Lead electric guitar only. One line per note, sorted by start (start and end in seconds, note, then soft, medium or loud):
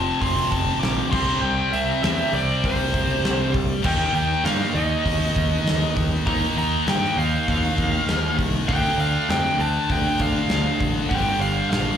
0.00 0.22 A5 loud
0.21 0.49 C6 loud
0.51 0.82 A5 loud
0.80 1.09 D6 loud
1.11 1.43 C6 loud
1.41 1.73 G5 loud
1.72 2.02 E5 loud
2.04 2.34 E5 medium
2.35 2.65 D5 medium
2.65 3.51 C5 medium
3.85 4.13 G5 loud
4.15 4.46 G5 loud
4.45 4.73 F5 loud
4.74 5.92 D#5 medium
6.27 6.55 A#5 loud
6.58 6.89 A#5 loud
6.89 7.18 G5 loud
7.18 8.35 F5 medium
8.69 9.00 G5 loud
9.01 9.30 F5 loud
9.30 9.61 G5 loud
9.61 9.92 A5 loud
9.91 10.21 G5 loud
10.21 10.78 F5 medium
11.09 11.41 G5 loud
11.41 11.69 F5 loud
11.70 11.97 F5 loud